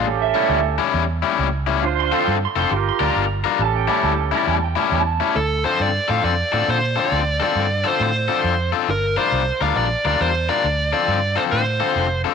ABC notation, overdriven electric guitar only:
X:1
M:4/4
L:1/8
Q:"Swing" 1/4=136
K:Dm
V:1 name="Overdriven electric guitar"
z [A,,G,^CE] z [A,,G,CE] z [A,,G,CE] z [A,,G,CE] | z [D,CFA] z [D,CFA] z [G,DFB] z [G,DFB] | z [A,,G,^CE] z [A,,G,CE] z [A,,G,CE] z [A,,G,CE] | z [D,CFA] z [D,CFA] z [D,CFA] z [D,CFA] |
z [D,CFA] z [D,CFA] z [D,CFA] z [D,CFA] | z [G,DFB] z [G,DFB] z [G,DFB] z [G,DFB] | z [D,CFA] z [D,CFA] z [D,CFA] z [D,CFA] |]